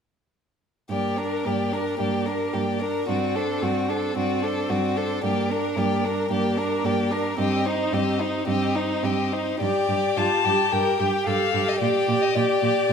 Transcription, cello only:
0, 0, Header, 1, 2, 480
1, 0, Start_track
1, 0, Key_signature, -2, "minor"
1, 0, Tempo, 558659
1, 775, Time_signature, 4, 2, 24, 8
1, 1252, Tempo, 539568
1, 7492, Tempo, 563380
1, 9412, Tempo, 542005
1, 11364, End_track
2, 0, Start_track
2, 0, Title_t, "Cello"
2, 0, Program_c, 0, 42
2, 772, Note_on_c, 0, 43, 28
2, 1174, Note_off_c, 0, 43, 0
2, 1253, Note_on_c, 0, 43, 31
2, 1657, Note_off_c, 0, 43, 0
2, 1732, Note_on_c, 0, 43, 31
2, 2133, Note_off_c, 0, 43, 0
2, 2216, Note_on_c, 0, 43, 26
2, 2620, Note_off_c, 0, 43, 0
2, 2702, Note_on_c, 0, 43, 32
2, 3101, Note_off_c, 0, 43, 0
2, 3179, Note_on_c, 0, 43, 34
2, 3578, Note_off_c, 0, 43, 0
2, 3659, Note_on_c, 0, 43, 33
2, 4053, Note_off_c, 0, 43, 0
2, 4137, Note_on_c, 0, 43, 32
2, 4537, Note_off_c, 0, 43, 0
2, 4614, Note_on_c, 0, 43, 36
2, 5011, Note_off_c, 0, 43, 0
2, 5086, Note_on_c, 0, 43, 38
2, 5484, Note_off_c, 0, 43, 0
2, 5563, Note_on_c, 0, 43, 40
2, 5964, Note_off_c, 0, 43, 0
2, 6045, Note_on_c, 0, 43, 35
2, 6446, Note_off_c, 0, 43, 0
2, 6527, Note_on_c, 0, 43, 42
2, 6929, Note_off_c, 0, 43, 0
2, 7010, Note_on_c, 0, 43, 41
2, 7414, Note_off_c, 0, 43, 0
2, 7491, Note_on_c, 0, 43, 45
2, 7891, Note_off_c, 0, 43, 0
2, 7969, Note_on_c, 0, 43, 36
2, 8379, Note_off_c, 0, 43, 0
2, 8461, Note_on_c, 0, 43, 32
2, 8529, Note_off_c, 0, 43, 0
2, 8701, Note_on_c, 0, 43, 30
2, 8769, Note_off_c, 0, 43, 0
2, 8939, Note_on_c, 0, 43, 27
2, 9007, Note_off_c, 0, 43, 0
2, 9179, Note_on_c, 0, 43, 26
2, 9248, Note_off_c, 0, 43, 0
2, 9415, Note_on_c, 0, 43, 32
2, 9486, Note_off_c, 0, 43, 0
2, 9657, Note_on_c, 0, 43, 30
2, 9727, Note_off_c, 0, 43, 0
2, 9897, Note_on_c, 0, 43, 30
2, 9968, Note_off_c, 0, 43, 0
2, 10138, Note_on_c, 0, 43, 27
2, 10208, Note_off_c, 0, 43, 0
2, 10376, Note_on_c, 0, 46, 36
2, 10447, Note_off_c, 0, 46, 0
2, 10616, Note_on_c, 0, 46, 34
2, 10687, Note_off_c, 0, 46, 0
2, 10859, Note_on_c, 0, 46, 36
2, 10930, Note_off_c, 0, 46, 0
2, 11096, Note_on_c, 0, 46, 34
2, 11167, Note_off_c, 0, 46, 0
2, 11335, Note_on_c, 0, 46, 41
2, 11364, Note_off_c, 0, 46, 0
2, 11364, End_track
0, 0, End_of_file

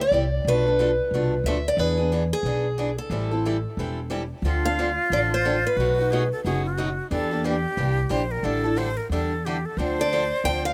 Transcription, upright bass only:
0, 0, Header, 1, 2, 480
1, 0, Start_track
1, 0, Key_signature, 0, "minor"
1, 0, Tempo, 333148
1, 644, Time_signature, 4, 2, 24, 8
1, 6394, Key_signature, -1, "minor"
1, 15471, End_track
2, 0, Start_track
2, 0, Title_t, "Upright bass"
2, 0, Program_c, 0, 32
2, 164, Note_on_c, 0, 36, 76
2, 572, Note_off_c, 0, 36, 0
2, 642, Note_on_c, 0, 35, 78
2, 1411, Note_off_c, 0, 35, 0
2, 1597, Note_on_c, 0, 36, 72
2, 2007, Note_off_c, 0, 36, 0
2, 2073, Note_on_c, 0, 38, 75
2, 2485, Note_off_c, 0, 38, 0
2, 2546, Note_on_c, 0, 40, 87
2, 3320, Note_off_c, 0, 40, 0
2, 3499, Note_on_c, 0, 35, 79
2, 4274, Note_off_c, 0, 35, 0
2, 4462, Note_on_c, 0, 33, 83
2, 5235, Note_off_c, 0, 33, 0
2, 5432, Note_on_c, 0, 28, 76
2, 6200, Note_off_c, 0, 28, 0
2, 6370, Note_on_c, 0, 38, 83
2, 7146, Note_off_c, 0, 38, 0
2, 7349, Note_on_c, 0, 33, 74
2, 8117, Note_off_c, 0, 33, 0
2, 8306, Note_on_c, 0, 35, 80
2, 9075, Note_off_c, 0, 35, 0
2, 9286, Note_on_c, 0, 30, 84
2, 10048, Note_off_c, 0, 30, 0
2, 10241, Note_on_c, 0, 40, 89
2, 11005, Note_off_c, 0, 40, 0
2, 11196, Note_on_c, 0, 36, 80
2, 11602, Note_off_c, 0, 36, 0
2, 11673, Note_on_c, 0, 34, 81
2, 12081, Note_off_c, 0, 34, 0
2, 12144, Note_on_c, 0, 33, 84
2, 12918, Note_off_c, 0, 33, 0
2, 13104, Note_on_c, 0, 40, 80
2, 13880, Note_off_c, 0, 40, 0
2, 14074, Note_on_c, 0, 38, 85
2, 14847, Note_off_c, 0, 38, 0
2, 15040, Note_on_c, 0, 38, 77
2, 15452, Note_off_c, 0, 38, 0
2, 15471, End_track
0, 0, End_of_file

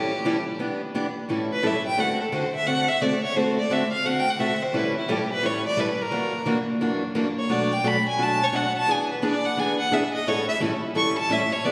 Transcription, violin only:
0, 0, Header, 1, 2, 480
1, 0, Start_track
1, 0, Tempo, 345224
1, 829, Time_signature, 4, 2, 24, 8
1, 16294, End_track
2, 0, Start_track
2, 0, Title_t, "Violin"
2, 0, Program_c, 0, 40
2, 0, Note_on_c, 0, 67, 79
2, 789, Note_off_c, 0, 67, 0
2, 2120, Note_on_c, 0, 71, 84
2, 2314, Note_on_c, 0, 76, 79
2, 2335, Note_off_c, 0, 71, 0
2, 2584, Note_off_c, 0, 76, 0
2, 2592, Note_on_c, 0, 79, 95
2, 2784, Note_on_c, 0, 78, 83
2, 2805, Note_off_c, 0, 79, 0
2, 3059, Note_off_c, 0, 78, 0
2, 3070, Note_on_c, 0, 69, 46
2, 3260, Note_on_c, 0, 72, 77
2, 3281, Note_off_c, 0, 69, 0
2, 3537, Note_off_c, 0, 72, 0
2, 3548, Note_on_c, 0, 76, 91
2, 3706, Note_on_c, 0, 78, 92
2, 3727, Note_off_c, 0, 76, 0
2, 4009, Note_on_c, 0, 76, 90
2, 4029, Note_off_c, 0, 78, 0
2, 4194, Note_on_c, 0, 74, 81
2, 4215, Note_off_c, 0, 76, 0
2, 4483, Note_off_c, 0, 74, 0
2, 4497, Note_on_c, 0, 73, 86
2, 4675, Note_on_c, 0, 72, 80
2, 4696, Note_off_c, 0, 73, 0
2, 4964, Note_off_c, 0, 72, 0
2, 4986, Note_on_c, 0, 74, 77
2, 5177, Note_on_c, 0, 76, 74
2, 5198, Note_off_c, 0, 74, 0
2, 5442, Note_off_c, 0, 76, 0
2, 5450, Note_on_c, 0, 77, 99
2, 5643, Note_on_c, 0, 78, 84
2, 5663, Note_off_c, 0, 77, 0
2, 5825, Note_on_c, 0, 79, 104
2, 5846, Note_off_c, 0, 78, 0
2, 5975, Note_on_c, 0, 78, 74
2, 5996, Note_off_c, 0, 79, 0
2, 6116, Note_on_c, 0, 76, 81
2, 6137, Note_off_c, 0, 78, 0
2, 6429, Note_on_c, 0, 72, 83
2, 6449, Note_off_c, 0, 76, 0
2, 6623, Note_on_c, 0, 71, 78
2, 6644, Note_off_c, 0, 72, 0
2, 6898, Note_off_c, 0, 71, 0
2, 6913, Note_on_c, 0, 64, 66
2, 7099, Note_on_c, 0, 67, 65
2, 7119, Note_off_c, 0, 64, 0
2, 7376, Note_off_c, 0, 67, 0
2, 7401, Note_on_c, 0, 71, 85
2, 7584, Note_on_c, 0, 73, 82
2, 7605, Note_off_c, 0, 71, 0
2, 7859, Note_off_c, 0, 73, 0
2, 7869, Note_on_c, 0, 74, 98
2, 8062, Note_on_c, 0, 71, 80
2, 8083, Note_off_c, 0, 74, 0
2, 8360, Note_on_c, 0, 70, 83
2, 8381, Note_off_c, 0, 71, 0
2, 9008, Note_off_c, 0, 70, 0
2, 10273, Note_on_c, 0, 73, 83
2, 10457, Note_on_c, 0, 74, 80
2, 10478, Note_off_c, 0, 73, 0
2, 10751, Note_on_c, 0, 79, 91
2, 10772, Note_off_c, 0, 74, 0
2, 10940, Note_on_c, 0, 83, 101
2, 10961, Note_off_c, 0, 79, 0
2, 11216, Note_off_c, 0, 83, 0
2, 11244, Note_on_c, 0, 80, 91
2, 11436, Note_on_c, 0, 81, 100
2, 11456, Note_off_c, 0, 80, 0
2, 11720, Note_on_c, 0, 73, 86
2, 11741, Note_off_c, 0, 81, 0
2, 11898, Note_on_c, 0, 78, 88
2, 11919, Note_off_c, 0, 73, 0
2, 12175, Note_off_c, 0, 78, 0
2, 12207, Note_on_c, 0, 81, 105
2, 12391, Note_on_c, 0, 80, 90
2, 12412, Note_off_c, 0, 81, 0
2, 12662, Note_off_c, 0, 80, 0
2, 12680, Note_on_c, 0, 71, 47
2, 12862, Note_on_c, 0, 74, 84
2, 12883, Note_off_c, 0, 71, 0
2, 13140, Note_on_c, 0, 78, 92
2, 13161, Note_off_c, 0, 74, 0
2, 13337, Note_on_c, 0, 80, 89
2, 13357, Note_off_c, 0, 78, 0
2, 13609, Note_off_c, 0, 80, 0
2, 13618, Note_on_c, 0, 78, 97
2, 13817, Note_on_c, 0, 76, 85
2, 13838, Note_off_c, 0, 78, 0
2, 14084, Note_off_c, 0, 76, 0
2, 14092, Note_on_c, 0, 75, 91
2, 14291, Note_on_c, 0, 73, 87
2, 14312, Note_off_c, 0, 75, 0
2, 14571, Note_off_c, 0, 73, 0
2, 14578, Note_on_c, 0, 76, 93
2, 14684, Note_off_c, 0, 76, 0
2, 15255, Note_on_c, 0, 85, 88
2, 15513, Note_off_c, 0, 85, 0
2, 15550, Note_on_c, 0, 81, 105
2, 15740, Note_on_c, 0, 76, 90
2, 15760, Note_off_c, 0, 81, 0
2, 16020, Note_on_c, 0, 73, 94
2, 16040, Note_off_c, 0, 76, 0
2, 16194, Note_on_c, 0, 74, 85
2, 16215, Note_off_c, 0, 73, 0
2, 16294, Note_off_c, 0, 74, 0
2, 16294, End_track
0, 0, End_of_file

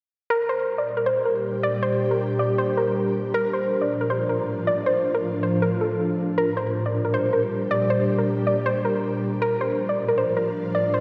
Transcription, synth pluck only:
0, 0, Header, 1, 2, 480
1, 0, Start_track
1, 0, Key_signature, -2, "minor"
1, 0, Tempo, 379747
1, 384, Time_signature, 4, 2, 24, 8
1, 13909, End_track
2, 0, Start_track
2, 0, Title_t, "Synth pluck"
2, 0, Program_c, 0, 84
2, 381, Note_on_c, 0, 70, 99
2, 589, Note_off_c, 0, 70, 0
2, 622, Note_on_c, 0, 72, 81
2, 961, Note_off_c, 0, 72, 0
2, 988, Note_on_c, 0, 74, 72
2, 1193, Note_off_c, 0, 74, 0
2, 1225, Note_on_c, 0, 70, 76
2, 1328, Note_off_c, 0, 70, 0
2, 1342, Note_on_c, 0, 72, 93
2, 1549, Note_off_c, 0, 72, 0
2, 1585, Note_on_c, 0, 70, 78
2, 2036, Note_off_c, 0, 70, 0
2, 2064, Note_on_c, 0, 74, 84
2, 2270, Note_off_c, 0, 74, 0
2, 2308, Note_on_c, 0, 72, 96
2, 2645, Note_off_c, 0, 72, 0
2, 2666, Note_on_c, 0, 70, 77
2, 3004, Note_off_c, 0, 70, 0
2, 3024, Note_on_c, 0, 74, 78
2, 3230, Note_off_c, 0, 74, 0
2, 3265, Note_on_c, 0, 72, 86
2, 3471, Note_off_c, 0, 72, 0
2, 3505, Note_on_c, 0, 70, 76
2, 4182, Note_off_c, 0, 70, 0
2, 4225, Note_on_c, 0, 70, 109
2, 4431, Note_off_c, 0, 70, 0
2, 4466, Note_on_c, 0, 72, 83
2, 4803, Note_off_c, 0, 72, 0
2, 4822, Note_on_c, 0, 74, 75
2, 5029, Note_off_c, 0, 74, 0
2, 5067, Note_on_c, 0, 70, 74
2, 5169, Note_off_c, 0, 70, 0
2, 5183, Note_on_c, 0, 72, 87
2, 5389, Note_off_c, 0, 72, 0
2, 5425, Note_on_c, 0, 70, 73
2, 5876, Note_off_c, 0, 70, 0
2, 5905, Note_on_c, 0, 74, 77
2, 6111, Note_off_c, 0, 74, 0
2, 6146, Note_on_c, 0, 72, 91
2, 6484, Note_off_c, 0, 72, 0
2, 6503, Note_on_c, 0, 70, 87
2, 6842, Note_off_c, 0, 70, 0
2, 6863, Note_on_c, 0, 72, 82
2, 7070, Note_off_c, 0, 72, 0
2, 7106, Note_on_c, 0, 70, 87
2, 7311, Note_off_c, 0, 70, 0
2, 7343, Note_on_c, 0, 69, 73
2, 8020, Note_off_c, 0, 69, 0
2, 8061, Note_on_c, 0, 70, 98
2, 8269, Note_off_c, 0, 70, 0
2, 8302, Note_on_c, 0, 72, 85
2, 8641, Note_off_c, 0, 72, 0
2, 8669, Note_on_c, 0, 74, 72
2, 8873, Note_off_c, 0, 74, 0
2, 8906, Note_on_c, 0, 70, 75
2, 9008, Note_off_c, 0, 70, 0
2, 9022, Note_on_c, 0, 72, 95
2, 9229, Note_off_c, 0, 72, 0
2, 9264, Note_on_c, 0, 70, 79
2, 9715, Note_off_c, 0, 70, 0
2, 9744, Note_on_c, 0, 74, 85
2, 9950, Note_off_c, 0, 74, 0
2, 9987, Note_on_c, 0, 72, 95
2, 10324, Note_off_c, 0, 72, 0
2, 10344, Note_on_c, 0, 70, 74
2, 10683, Note_off_c, 0, 70, 0
2, 10703, Note_on_c, 0, 74, 80
2, 10910, Note_off_c, 0, 74, 0
2, 10944, Note_on_c, 0, 72, 90
2, 11150, Note_off_c, 0, 72, 0
2, 11184, Note_on_c, 0, 70, 80
2, 11861, Note_off_c, 0, 70, 0
2, 11904, Note_on_c, 0, 70, 104
2, 12110, Note_off_c, 0, 70, 0
2, 12146, Note_on_c, 0, 72, 82
2, 12484, Note_off_c, 0, 72, 0
2, 12502, Note_on_c, 0, 74, 77
2, 12709, Note_off_c, 0, 74, 0
2, 12746, Note_on_c, 0, 70, 81
2, 12848, Note_off_c, 0, 70, 0
2, 12863, Note_on_c, 0, 72, 92
2, 13070, Note_off_c, 0, 72, 0
2, 13103, Note_on_c, 0, 70, 78
2, 13555, Note_off_c, 0, 70, 0
2, 13584, Note_on_c, 0, 74, 80
2, 13790, Note_off_c, 0, 74, 0
2, 13825, Note_on_c, 0, 72, 93
2, 13909, Note_off_c, 0, 72, 0
2, 13909, End_track
0, 0, End_of_file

